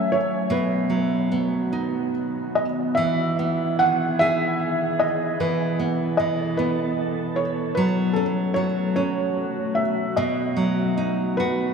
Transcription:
0.00 0.47 F#3 medium
0.00 0.49 F#3 medium
0.00 0.48 A3 medium
0.00 0.47 C#4 medium
0.00 0.47 A4 soft
0.00 0.15 E5 medium
0.00 0.49 G#5 medium
0.12 0.53 C#5 medium
0.50 2.93 B2 medium
0.50 2.97 B3 medium
0.50 2.11 B4 medium
0.55 2.97 D#3 medium
0.55 2.97 F#4 medium
0.90 2.52 F#3 soft
1.32 2.94 B3 soft
1.73 2.94 D#4 soft
2.55 2.65 D#5 medium
2.95 5.36 E3 medium
2.95 3.81 E5 medium
3.00 10.15 B2 medium
3.00 5.39 B3 medium
3.00 5.39 G#4 medium
3.39 4.96 B3 soft
3.79 5.36 D#3 soft
3.79 4.21 F#5 medium
4.19 5.37 G#4 medium
4.19 5.02 E5 medium
5.00 5.41 D#5 medium
5.40 6.18 E3 medium
5.40 7.77 A4 medium
5.40 6.15 B4 medium
5.44 7.77 B3 medium
5.79 6.58 B3 medium
6.17 7.74 E3 soft
6.17 6.59 D#5 medium
6.57 7.74 B3 medium
6.57 7.39 B4 medium
7.36 7.78 C#5 medium
7.75 8.55 F#3 medium
7.75 10.16 A3 medium
7.75 11.74 F#4 medium
7.75 7.84 B4 medium
8.13 8.95 C#4 soft
8.13 8.23 A4 medium
8.54 10.14 F#3 medium
8.54 8.63 C#5 medium
8.96 10.14 C#4 medium
8.96 9.80 C#5 medium
9.75 10.18 E5 medium
10.16 11.74 B2 medium
10.16 11.74 D#3 medium
10.16 11.74 B3 medium
10.16 11.74 D#5 medium
10.57 11.74 F#3 soft
10.97 11.74 D#4 medium
11.37 11.74 F#4 medium
11.37 11.74 B4 medium

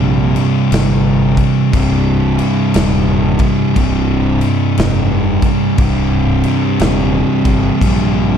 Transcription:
0.00 0.34 A#1 loud
0.00 1.71 C2 medium
0.00 1.74 C2 medium
0.00 1.72 G2 medium
0.00 1.72 G2 loud
0.00 1.72 C3 medium
0.00 1.77 C3 medium
0.36 crash medium
0.71 1.36 G1 loud
0.71 snare loud
0.71 crash loud
1.37 kick medium
1.37 crash medium
1.73 2.38 C1 medium
1.73 3.76 C2 medium
1.73 3.75 G2 medium
1.73 kick loud
1.73 crash loud
1.78 3.79 C3 loud
2.39 crash medium
2.74 3.39 D#1 medium
2.74 snare loud
2.74 crash loud
3.39 kick loud
3.39 crash medium
3.76 4.40 C1 loud
3.76 5.78 C2 medium
3.76 5.77 G2 medium
3.76 5.82 C3 medium
3.76 kick loud
3.76 crash medium
4.41 crash medium
4.78 5.42 F1 medium
4.78 snare loud
4.78 crash medium
5.42 kick medium
5.42 crash medium
5.78 6.42 C1 loud
5.78 7.80 C2 medium
5.78 7.80 G2 loud
5.78 kick loud
5.78 crash medium
5.83 7.84 C3 loud
6.43 crash medium
6.80 7.21 D#1 medium
6.80 snare loud
6.80 crash medium
7.45 7.68 G1 medium
7.45 kick loud
7.45 crash medium
7.81 8.38 A#1 medium
7.81 8.38 C2 medium
7.81 8.38 G2 medium
7.81 8.38 C3 medium
7.81 kick medium
7.81 crash loud

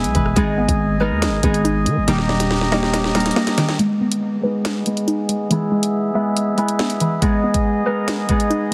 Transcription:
0.00 0.15 G#3 medium
0.00 0.35 G#3 medium
0.00 0.36 B3 loud
0.00 0.36 B3 medium
0.00 0.43 E4 medium
0.00 0.37 G#4 loud
0.00 2.04 G#4 medium
0.00 0.15 B4 loud
0.00 0.35 E5 medium
0.00 0.37 E5 loud
0.00 0.43 E5 medium
0.00 1.22 G#5 medium
0.00 2.04 G#5 medium
0.04 0.14 B1 loud
0.04 closed hi-hat medium
0.15 0.35 E1 loud
0.15 0.37 E3 medium
0.15 1.07 B4 medium
0.15 kick loud
0.15 closed hi-hat medium
0.26 cross-stick medium
0.36 0.67 G#1 loud
0.36 0.99 G#3 loud
0.36 1.65 G#3 medium
0.36 1.00 B3 loud
0.36 1.00 D#4 loud
0.36 1.44 G#4 loud
0.36 3.76 D#5 medium
0.36 kick loud
0.36 closed hi-hat medium
0.58 1.86 B3 medium
0.69 1.13 G#1 loud
0.69 kick loud
0.69 closed hi-hat medium
1.00 1.42 G#3 medium
1.00 1.38 B3 medium
1.00 1.39 D#4 medium
1.00 1.39 A#4 loud
1.00 2.08 B4 loud
1.11 1.29 D#2 loud
1.22 snare loud
1.22 closed hi-hat medium
1.27 1.43 G#1 loud
1.43 1.88 G#1 loud
1.43 2.13 G#3 medium
1.43 2.14 B3 medium
1.43 2.08 D#4 medium
1.43 2.13 G#4 loud
1.43 kick medium
1.43 closed hi-hat medium
1.54 closed hi-hat medium
1.65 2.08 D#4 loud
1.65 closed hi-hat medium
1.86 1.99 D#3 loud
1.86 2.07 G#3 medium
1.86 closed hi-hat medium
1.97 2.07 G#1 loud
2.07 3.32 D#1 loud
2.07 3.36 D#3 medium
2.07 2.70 G3 loud
2.07 2.72 A#3 loud
2.07 2.72 D#4 loud
2.07 3.78 G4 medium
2.07 2.72 G4 loud
2.07 3.78 A#5 medium
2.07 snare medium
2.07 closed hi-hat medium
2.18 snare medium
2.29 3.58 G3 medium
2.29 snare medium
2.40 snare medium
2.40 closed hi-hat medium
2.51 snare medium
2.61 snare medium
2.72 3.13 G3 medium
2.72 3.10 A#3 medium
2.72 3.10 D#4 medium
2.72 3.10 G4 medium
2.72 4.64 C#5 medium
2.72 3.79 D#5 loud
2.72 snare medium
2.83 snare medium
2.94 3.36 D#5 medium
2.94 snare loud
2.94 closed hi-hat medium
3.04 snare medium
3.14 3.84 G3 medium
3.14 3.85 A#3 medium
3.14 3.79 D#4 medium
3.14 3.85 A#4 medium
3.14 snare loud
3.14 closed hi-hat medium
3.20 closed hi-hat medium
3.26 snare medium
3.26 closed hi-hat medium
3.31 closed hi-hat medium
3.36 3.79 A#3 loud
3.36 5.15 D#5 medium
3.36 snare loud
3.47 snare medium
3.47 closed hi-hat medium
3.58 3.79 D#3 medium
3.58 3.84 G5 medium
3.58 snare loud
3.58 closed hi-hat medium
3.69 snare loud
3.78 4.42 G#3 loud
3.78 5.08 G#3 medium
3.78 4.43 B3 loud
3.78 8.74 B3 medium
3.78 4.43 D#4 loud
3.78 8.74 G#4 medium
3.78 4.87 G#4 loud
3.78 5.49 D#5 medium
3.78 closed hi-hat medium
4.01 5.29 B3 medium
4.12 closed hi-hat medium
4.43 4.85 G#3 medium
4.43 4.81 B3 medium
4.43 4.82 D#4 medium
4.43 5.51 B4 loud
4.43 4.82 B4 medium
4.65 snare loud
4.65 closed hi-hat medium
4.86 5.49 G#3 medium
4.86 5.51 B3 medium
4.86 5.57 D#4 medium
4.86 5.52 G#4 medium
4.86 closed hi-hat medium
4.97 closed hi-hat medium
5.07 5.51 D#4 loud
5.07 closed hi-hat medium
5.29 5.51 G#3 medium
5.29 closed hi-hat medium
5.50 6.79 E3 medium
5.50 6.13 G#3 loud
5.50 6.14 B3 loud
5.50 6.14 E4 loud
5.50 7.23 G#4 loud
5.50 7.20 E5 medium
5.50 closed hi-hat medium
5.72 7.00 G#3 medium
5.83 closed hi-hat medium
6.14 6.56 G#3 medium
6.14 6.53 B3 medium
6.14 6.53 E4 medium
6.14 6.53 B4 loud
6.14 7.22 E5 medium
6.37 closed hi-hat medium
6.57 7.21 G#3 medium
6.57 7.22 B3 medium
6.57 7.28 E4 medium
6.57 7.01 B4 loud
6.57 8.08 G#5 medium
6.57 closed hi-hat soft
6.68 closed hi-hat medium
6.79 7.22 B3 medium
6.79 7.28 E5 medium
6.79 snare loud
6.90 closed hi-hat medium
7.00 7.22 E3 medium
7.00 7.93 B4 medium
7.00 closed hi-hat medium
7.22 7.84 G#3 loud
7.22 8.51 G#3 medium
7.22 7.86 B3 loud
7.22 7.86 D#4 loud
7.22 8.30 G#4 loud
7.22 8.74 D#5 medium
7.22 kick loud
7.22 closed hi-hat medium
7.44 8.72 B3 medium
7.54 kick loud
7.54 closed hi-hat medium
7.85 8.28 G#3 medium
7.85 8.24 B3 medium
7.85 8.24 D#4 medium
7.85 8.24 A#4 loud
7.85 8.74 B4 medium
8.08 snare loud
8.08 closed hi-hat medium
8.29 8.74 G#3 medium
8.29 8.74 B3 medium
8.29 8.74 D#4 medium
8.29 8.74 G#4 medium
8.29 kick medium
8.29 closed hi-hat medium
8.40 closed hi-hat medium
8.50 8.74 D#4 medium
8.50 closed hi-hat medium

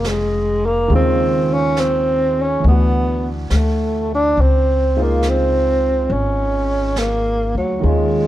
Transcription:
0.00 0.86 F1 medium
0.00 0.90 C#3 soft
0.00 0.87 D#3 soft
0.00 0.89 G#3 soft
0.00 0.92 F4 medium
0.04 0.67 G#3 medium
0.04 snare soft
0.04 hi-hat pedal soft
0.66 0.92 A#3 medium
0.88 2.59 D#2 medium
0.88 2.64 C#3 soft
0.88 2.62 D#3 medium
0.88 2.63 G#3 soft
0.88 brush sweep soft
0.93 1.55 C4 medium
0.93 2.65 F4 medium
1.53 1.82 C#4 medium
1.77 2.43 C4 medium
1.77 snare soft
1.77 hi-hat pedal soft
2.42 2.66 C#4 medium
2.60 4.35 E3 soft
2.60 4.37 A3 soft
2.60 brush sweep soft
2.64 3.46 D2 medium
2.64 3.31 B3 medium
2.64 4.38 D4 soft
2.71 4.40 F#4 soft
3.50 4.33 D2 medium
3.50 3.58 G#3 medium
3.50 snare soft
3.50 hi-hat pedal soft
3.56 4.12 A3 medium
4.14 4.42 D4 medium
4.36 6.06 C#2 medium
4.36 brush sweep soft
4.41 5.04 C4 medium
4.96 7.84 C#3 soft
4.96 7.81 G#3 soft
4.96 7.84 D#4 soft
4.96 7.83 F4 medium
5.02 5.30 A#3 medium
5.23 snare soft
5.23 hi-hat pedal soft
5.29 6.14 C4 medium
6.10 7.52 G#1 medium
6.10 7.00 C#4 medium
6.10 brush sweep soft
6.96 7.57 A#3 medium
6.96 snare soft
6.96 hi-hat pedal soft
7.55 7.81 D2 medium
7.55 7.87 F#3 medium
7.80 8.27 D#2 medium
7.80 8.27 D#3 soft
7.80 8.27 G#3 soft
7.80 8.27 C#4 soft
7.80 brush sweep soft
7.85 8.27 G#3 medium
7.85 8.27 F4 soft

